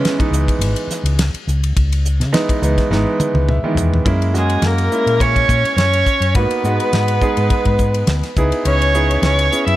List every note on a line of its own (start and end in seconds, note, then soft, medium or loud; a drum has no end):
0.00 0.16 E3 medium
0.00 0.16 G#3 medium
0.00 0.16 B3 medium
0.00 0.16 C#4 loud
0.05 snare loud
0.05 ride medium
0.19 1.21 E3 medium
0.19 1.21 G#3 medium
0.19 1.21 B3 medium
0.19 1.21 D#4 medium
0.19 muted fingered electric bass stroke soft
0.19 kick medium
0.19 ride medium
0.31 0.45 C#2 medium
0.31 hi-hat pedal medium
0.48 kick medium
0.48 ride medium
0.59 0.73 G#1 medium
0.59 ride medium
0.76 ride medium
0.87 muted fingered electric bass stroke soft
0.87 snare soft
0.87 hi-hat pedal medium
1.03 1.29 C#2 medium
1.03 ride medium
1.19 snare loud
1.19 ride medium
1.34 muted fingered electric bass stroke soft
1.34 ride medium
1.47 1.72 C#2 medium
1.47 hi-hat pedal medium
1.64 ride medium
1.76 2.22 C#2 medium
1.76 kick loud
1.76 ride medium
1.92 ride medium
2.05 hi-hat pedal medium
2.20 2.31 C#3 medium
2.20 snare soft
2.20 ride medium
2.33 2.59 E3 medium
2.33 2.59 G#3 medium
2.33 2.59 B3 medium
2.33 2.59 D#4 medium
2.33 snare medium
2.33 ride medium
2.49 muted fingered electric bass stroke soft
2.49 kick medium
2.49 ride medium
2.62 2.75 C#2 medium
2.62 2.88 E3 medium
2.62 2.88 G#3 medium
2.62 2.88 B3 medium
2.62 2.88 D#4 medium
2.62 hi-hat pedal medium
2.78 kick medium
2.78 snare soft
2.78 ride medium
2.90 3.04 G#1 medium
2.90 3.56 E3 medium
2.90 3.56 G#3 medium
2.90 3.56 B3 medium
2.90 3.56 D#4 medium
2.90 snare medium
3.20 muted fingered electric bass stroke soft
3.20 hi-hat pedal medium
3.20 high tom medium
3.34 3.59 C#2 medium
3.34 high tom medium
3.49 4.02 E5 medium
3.49 mid tom medium
3.63 4.05 D#3 medium
3.63 4.05 E3 medium
3.63 4.04 G#3 medium
3.63 4.06 B3 medium
3.63 muted fingered electric bass stroke soft
3.75 4.01 E2 medium
3.75 floor tom medium
3.75 hi-hat pedal medium
3.94 floor tom medium
4.05 4.56 F#2 medium
4.05 4.31 G#3 medium
4.05 4.31 A#3 medium
4.05 4.31 C#4 medium
4.05 4.31 E4 medium
4.05 kick loud
4.05 ride medium
4.22 ride soft
4.34 4.86 G#3 medium
4.34 4.67 G#3 medium
4.34 4.86 A#3 medium
4.34 4.86 C#4 medium
4.34 4.86 F#4 medium
4.34 4.68 G#4 medium
4.34 snare soft
4.34 hi-hat pedal medium
4.50 ride medium
4.62 4.87 F#2 medium
4.62 5.24 A#3 medium
4.62 snare loud
4.62 ride medium
4.67 5.22 A#4 medium
4.78 ride medium
4.92 5.96 G#3 medium
4.92 5.96 A#3 medium
4.92 5.96 C#4 medium
4.92 5.96 E4 medium
4.92 hi-hat pedal medium
5.06 5.43 A#2 medium
5.06 ride medium
5.20 5.78 C#4 medium
5.20 5.76 C#5 medium
5.20 kick medium
5.20 ride medium
5.36 kick medium
5.36 ride soft
5.48 5.62 A#2 medium
5.48 kick medium
5.48 hi-hat pedal medium
5.64 muted fingered electric bass stroke soft
5.64 ride medium
5.76 6.02 F#2 medium
5.76 6.37 C#4 medium
5.76 6.37 C#5 medium
5.76 snare medium
5.76 ride medium
5.93 ride soft
6.06 kick medium
6.06 hi-hat pedal medium
6.20 6.33 F#2 medium
6.20 ride medium
6.34 6.48 G#2 medium
6.34 6.61 A#3 medium
6.34 6.61 B3 medium
6.34 8.37 B3 medium
6.34 6.61 D#4 medium
6.34 6.62 F#4 medium
6.34 8.37 B4 medium
6.34 kick medium
6.34 ride medium
6.50 muted fingered electric bass stroke soft
6.50 ride medium
6.64 6.77 G#2 medium
6.64 7.17 G#3 medium
6.64 7.17 B3 medium
6.64 7.17 D#4 medium
6.64 7.17 F#4 medium
6.64 hi-hat pedal medium
6.80 ride medium
6.93 7.18 G#2 medium
6.93 snare medium
6.93 ride medium
7.08 ride medium
7.21 8.26 G#3 medium
7.21 8.26 B3 medium
7.21 8.26 D#4 medium
7.21 8.26 G#4 medium
7.21 kick medium
7.21 hi-hat pedal medium
7.37 7.49 G#2 medium
7.37 ride soft
7.50 kick medium
7.50 ride medium
7.65 8.02 G#2 medium
7.65 kick medium
7.65 ride soft
7.78 kick medium
7.78 hi-hat pedal medium
7.94 ride medium
8.07 8.21 D2 medium
8.07 snare medium
8.07 ride medium
8.23 snare soft
8.23 ride soft
8.36 8.50 C#2 medium
8.36 8.89 B3 medium
8.36 8.90 D#4 medium
8.36 8.89 E4 medium
8.36 8.90 G#4 medium
8.36 kick medium
8.36 hi-hat pedal medium
8.52 ride soft
8.65 9.16 C#2 medium
8.65 9.20 C#4 medium
8.65 9.20 C#5 medium
8.65 ride medium
8.82 ride medium
8.94 9.47 B3 medium
8.94 9.47 D#4 medium
8.94 9.47 E4 medium
8.94 9.47 G#4 medium
8.94 hi-hat pedal medium
9.11 ride medium
9.22 9.48 C#2 medium
9.22 9.65 C#4 medium
9.22 9.65 C#5 medium
9.22 snare medium
9.22 ride medium
9.39 ride medium
9.51 9.76 B3 medium
9.51 9.76 C#4 medium
9.51 9.76 E4 medium
9.51 9.76 G#4 medium
9.51 hi-hat pedal medium
9.67 9.76 F#2 medium
9.67 9.76 E4 medium
9.67 9.76 E5 medium
9.67 ride medium